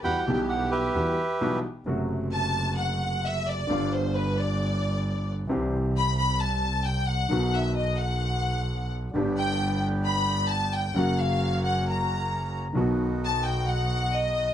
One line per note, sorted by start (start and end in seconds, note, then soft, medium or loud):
0.03 0.23 E2 medium
0.03 0.23 E2 soft
0.03 0.23 E3 soft
0.03 0.22 G3 soft
0.03 0.23 G3 soft
0.03 0.23 B3 soft
0.03 0.22 E4 soft
0.03 0.23 F#4 soft
0.03 1.59 G4 medium
0.03 0.17 F#5 medium
0.03 0.32 G5 medium
0.03 0.20 B5 medium
0.18 0.25 F#5 medium
0.26 0.91 B1 medium
0.26 0.92 B1 medium
0.26 0.92 B2 medium
0.26 0.91 E3 medium
0.26 0.91 G3 medium
0.26 0.92 G3 medium
0.26 0.92 B3 medium
0.26 0.91 E4 medium
0.26 0.91 G4 medium
0.30 0.93 G4 medium
0.30 0.40 G5 medium
0.49 0.70 F#5 medium
0.71 1.59 G4 medium
0.71 1.59 B4 medium
0.71 1.60 E5 medium
0.94 1.14 E2 medium
0.94 1.15 E2 medium
0.94 1.14 E3 medium
0.94 1.13 G3 soft
0.94 1.15 G3 soft
0.94 1.15 B3 soft
0.94 1.14 E4 soft
0.94 1.14 F#4 medium
0.94 1.15 F#4 soft
1.39 1.60 B1 medium
1.39 1.61 B2 medium
1.39 1.60 E3 medium
1.39 1.59 G3 medium
1.39 1.60 G3 medium
1.39 1.60 B3 medium
1.39 1.59 E4 medium
1.39 1.60 F#4 medium
1.86 3.60 F#1 medium
1.86 3.60 F#2 medium
1.86 3.60 C3 medium
1.86 3.60 F#3 medium
1.86 3.61 A3 soft
1.86 3.61 F#4 medium
2.32 2.75 A5 loud
2.79 3.24 F#5 medium
3.25 3.47 E5 medium
3.48 3.93 D5 medium
3.67 5.41 G1 medium
3.67 5.42 G1 medium
3.67 5.41 G2 medium
3.67 5.40 D3 medium
3.67 5.41 G3 soft
3.67 5.42 B3 soft
3.71 5.42 F4 medium
3.94 4.15 C5 medium
4.16 4.38 B4 medium
4.38 5.28 D5 medium
5.47 7.22 C2 medium
5.47 7.22 C3 medium
5.47 7.21 E3 medium
5.47 7.21 G3 medium
5.47 7.22 C4 medium
5.51 7.23 G4 medium
5.97 6.17 B5 loud
6.18 6.39 B5 loud
6.40 6.86 A5 medium
6.85 7.08 G5 medium
7.07 7.53 F#5 medium
7.29 9.05 B1 medium
7.29 9.05 B2 medium
7.29 9.04 D#3 medium
7.29 9.04 F#3 soft
7.29 9.05 B3 soft
7.29 9.06 F#4 medium
7.53 7.76 E5 medium
7.75 7.97 D#5 medium
7.98 8.90 F#5 medium
9.13 10.88 G1 medium
9.13 10.88 G2 medium
9.13 10.87 D3 medium
9.13 10.88 G3 medium
9.13 10.87 B3 medium
9.13 10.88 B3 soft
9.13 10.87 D4 medium
9.13 10.87 G4 medium
9.18 10.89 G4 medium
9.38 9.80 G5 loud
10.06 10.48 B5 loud
10.49 10.73 A5 medium
10.74 10.97 G5 medium
10.94 12.68 F#1 medium
10.94 12.68 F#2 medium
10.94 12.67 C#3 medium
10.94 12.67 F#3 medium
10.94 12.68 A#3 medium
10.94 12.68 C#4 medium
10.94 12.68 F#4 medium
10.94 11.19 F#5 medium
10.99 12.69 F#4 medium
11.19 11.64 F5 medium
11.65 11.86 F#5 medium
11.90 12.56 A#5 medium
12.73 14.48 B1 medium
12.73 14.49 B1 medium
12.73 14.48 B2 medium
12.73 14.47 D#3 medium
12.73 14.48 F#3 medium
12.73 14.48 B3 medium
12.73 14.49 B3 soft
12.73 14.48 D#4 medium
12.73 14.48 F#4 medium
12.77 14.49 F#4 medium
13.25 13.45 A5 loud
13.45 13.68 G5 loud
13.68 14.13 F#5 loud
14.13 14.54 D#5 loud